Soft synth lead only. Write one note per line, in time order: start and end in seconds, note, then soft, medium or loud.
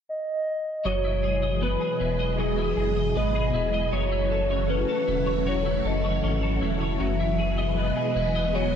0.09 0.87 D#5 loud
0.86 1.64 C#5 loud
1.63 2.41 B4 medium
2.39 3.18 G#4 medium
3.17 3.93 D#5 loud
3.93 4.72 C#5 loud
4.70 5.50 B4 medium
5.48 5.88 C#5 medium
5.87 6.63 D#5 medium
7.01 7.80 E5 loud
7.78 8.57 D#5 loud
8.55 8.76 C#5 loud